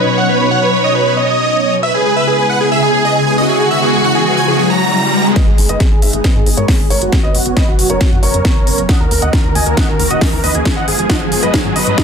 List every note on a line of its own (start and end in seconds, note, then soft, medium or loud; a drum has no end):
0.00 1.80 B2 medium
0.00 1.80 F#3 medium
0.00 1.80 C#4 medium
0.00 1.79 D#4 medium
0.00 1.74 C#5 loud
0.07 0.16 B4 medium
0.18 0.27 F#5 medium
0.29 0.38 B4 medium
0.40 0.49 B4 medium
0.51 0.60 F#5 medium
0.62 0.71 B4 medium
0.73 0.82 B4 medium
0.84 0.93 D#5 medium
0.95 1.04 B4 medium
1.06 1.15 B4 medium
1.17 1.74 D#5 medium
1.83 5.33 C#3 medium
1.83 5.33 G#3 medium
1.83 5.33 B3 medium
1.83 5.33 E4 medium
1.83 2.63 B4 loud
1.83 1.92 E5 loud
1.83 riser medium
1.94 2.03 G#4 medium
2.06 2.14 G#4 medium
2.16 2.25 E5 medium
2.27 2.36 G#4 medium
2.38 2.47 G#4 medium
2.49 2.58 F#5 medium
2.61 2.70 G#4 medium
2.71 3.29 G#4 medium
2.71 2.81 E5 medium
2.82 2.91 G#4 medium
2.94 3.03 G#4 medium
3.05 3.14 D#5 medium
3.16 3.25 G#4 medium
3.27 3.36 G#4 medium
3.38 5.27 F#4 loud
3.38 3.47 D#5 medium
3.49 3.58 G#4 medium
3.60 3.69 G#4 medium
3.71 3.80 E5 medium
3.82 3.91 G#4 medium
3.93 4.02 G#4 medium
4.04 4.13 F#5 medium
4.15 4.24 G#4 medium
4.26 4.35 G#4 medium
4.37 4.46 G#5 medium
4.48 4.57 G#4 medium
4.59 4.68 G#4 medium
4.70 5.27 A#5 loud
5.36 7.11 G#3 medium
5.36 8.86 B3 medium
5.36 7.11 D#4 medium
5.36 5.45 B4 medium
5.36 5.45 D#5 loud
5.36 kick loud
5.36 snare soft
5.36 closed hi-hat medium
5.36 riser medium
5.47 5.55 G#1 medium
5.47 5.56 G#4 medium
5.58 5.66 G#1 medium
5.58 5.67 G#4 medium
5.58 open hi-hat loud
5.69 5.77 G#1 medium
5.69 5.78 B4 medium
5.69 5.78 D#5 medium
5.69 closed hi-hat medium
5.80 5.89 G#4 medium
5.80 kick loud
5.80 snare soft
5.80 closed hi-hat medium
5.91 5.99 G#1 medium
5.91 6.00 G#4 medium
6.02 6.10 G#1 loud
6.02 6.11 G#4 medium
6.02 6.11 E5 medium
6.02 open hi-hat loud
6.13 6.21 G#1 medium
6.13 6.22 G#4 medium
6.13 closed hi-hat medium
6.24 6.33 B4 medium
6.24 6.33 D#5 medium
6.24 kick loud
6.24 snare medium
6.24 closed hi-hat medium
6.35 6.43 G#2 medium
6.35 6.44 G#4 medium
6.35 6.45 G#4 medium
6.46 6.55 G#1 medium
6.46 6.55 G#4 medium
6.46 6.56 G#4 medium
6.46 open hi-hat loud
6.57 6.66 G#2 medium
6.57 6.67 A#4 medium
6.57 6.66 C#5 medium
6.57 6.67 C#5 medium
6.57 closed hi-hat medium
6.68 6.77 G#4 medium
6.68 6.78 G#4 medium
6.68 kick loud
6.68 snare medium
6.68 open hi-hat medium
6.79 6.88 G#1 medium
6.79 6.88 G#4 medium
6.79 6.89 G#4 medium
6.90 6.99 G#1 loud
6.90 7.00 A#4 medium
6.90 6.99 C#5 medium
6.90 7.00 C#5 medium
6.90 open hi-hat loud
7.01 7.10 G#1 medium
7.01 7.10 F#4 medium
7.01 7.11 F#4 medium
7.01 closed hi-hat medium
7.12 8.87 F#3 medium
7.12 10.62 C#4 medium
7.12 7.22 F#4 medium
7.12 kick loud
7.12 snare soft
7.12 closed hi-hat medium
7.23 7.32 F#1 medium
7.23 7.33 B4 medium
7.23 7.32 D#5 medium
7.23 7.33 D#5 medium
7.34 7.43 F#1 loud
7.34 7.44 F#4 medium
7.34 open hi-hat loud
7.46 7.54 F#1 medium
7.46 7.55 F#4 medium
7.46 closed hi-hat medium
7.56 7.66 B4 medium
7.56 7.66 D#5 medium
7.56 kick loud
7.56 snare medium
7.56 closed hi-hat medium
7.68 7.76 F#1 medium
7.68 7.77 F#4 medium
7.78 7.87 F#1 loud
7.78 7.88 F#4 medium
7.78 open hi-hat loud
7.90 7.98 F#1 medium
7.90 7.99 A#4 medium
7.90 7.99 C#5 medium
7.90 closed hi-hat medium
8.01 8.10 F#4 medium
8.01 kick loud
8.01 snare medium
8.01 closed hi-hat medium
8.12 8.20 F#2 medium
8.12 8.21 F#4 medium
8.23 8.31 F#1 loud
8.23 8.80 A#4 medium
8.23 8.80 C#5 medium
8.23 8.80 C#5 loud
8.23 open hi-hat loud
8.34 8.42 F#2 medium
8.34 closed hi-hat medium
8.45 kick loud
8.45 snare medium
8.45 closed hi-hat medium
8.56 8.64 F#1 medium
8.67 8.75 F#1 medium
8.67 open hi-hat loud
8.78 8.86 F#1 medium
8.78 closed hi-hat medium
8.89 10.64 D#3 medium
8.89 10.64 A#3 medium
8.89 10.64 F#4 medium
8.89 8.98 D#5 medium
8.89 8.98 F#5 medium
8.89 8.98 F#5 loud
8.89 kick loud
8.89 snare medium
8.89 closed hi-hat medium
9.00 9.08 D#2 medium
9.00 9.09 A#4 medium
9.11 9.19 D#2 loud
9.11 9.20 A#4 medium
9.11 open hi-hat loud
9.22 9.30 D#2 medium
9.22 9.31 D#5 medium
9.22 9.31 F#5 medium
9.22 9.31 F#5 loud
9.22 closed hi-hat medium
9.33 9.42 A#4 medium
9.33 kick loud
9.33 snare medium
9.33 closed hi-hat medium
9.44 9.52 D#2 medium
9.44 9.53 A#4 medium
9.55 9.63 D#2 loud
9.55 9.64 D#5 medium
9.55 9.64 G#5 medium
9.55 open hi-hat loud
9.66 9.74 D#2 loud
9.66 9.75 A#4 medium
9.66 closed hi-hat medium
9.77 9.86 D#5 medium
9.77 9.86 F#5 medium
9.77 kick loud
9.77 snare medium
9.77 closed hi-hat medium
9.88 9.96 D#1 medium
9.88 9.97 A#4 medium
9.99 10.07 D#2 medium
9.99 10.08 A#4 medium
9.99 open hi-hat loud
10.10 10.18 D#1 medium
10.10 10.19 F#4 medium
10.10 10.19 D#5 loud
10.10 10.20 D#5 medium
10.10 closed hi-hat medium
10.21 10.30 A#4 medium
10.21 10.31 A#4 medium
10.21 kick loud
10.21 snare medium
10.21 open hi-hat medium
10.33 10.41 D#2 medium
10.33 10.42 A#4 medium
10.44 10.52 D#2 medium
10.44 10.53 B4 medium
10.44 10.53 D#5 loud
10.44 open hi-hat loud
10.54 10.63 D#2 medium
10.54 10.63 G#4 medium
10.54 10.64 G#4 medium
10.54 closed hi-hat medium
10.65 12.04 G#3 medium
10.65 12.04 B3 medium
10.65 12.04 D#4 medium
10.65 10.75 G#4 medium
10.65 kick loud
10.65 snare medium
10.65 closed hi-hat medium
10.76 10.85 G#1 medium
10.76 10.86 D#5 medium
10.76 10.86 F#5 medium
10.87 10.96 G#1 loud
10.87 10.96 G#4 medium
10.87 10.97 G#4 medium
10.87 open hi-hat loud
10.98 11.07 G#1 medium
10.98 11.08 G#4 medium
10.98 closed hi-hat medium
11.09 11.19 D#5 medium
11.09 11.19 F#5 medium
11.09 kick loud
11.09 snare medium
11.09 closed hi-hat medium
11.21 11.29 G#1 medium
11.21 11.30 G#4 medium
11.31 11.40 G#1 loud
11.31 11.41 G#4 medium
11.31 open hi-hat loud
11.43 11.51 G#1 loud
11.43 11.52 B4 medium
11.43 11.52 D#5 medium
11.43 11.52 D#5 loud
11.43 closed hi-hat medium
11.54 11.63 G#4 medium
11.54 kick loud
11.54 snare medium
11.54 closed hi-hat medium
11.65 11.73 G#2 medium
11.65 11.74 G#4 medium
11.76 11.84 G#1 loud
11.76 12.04 B4 medium
11.76 12.04 D#5 loud
11.76 12.04 D#5 medium
11.76 open hi-hat loud
11.87 11.95 G#2 medium
11.87 closed hi-hat medium
11.98 kick loud
11.98 snare medium
11.98 closed hi-hat medium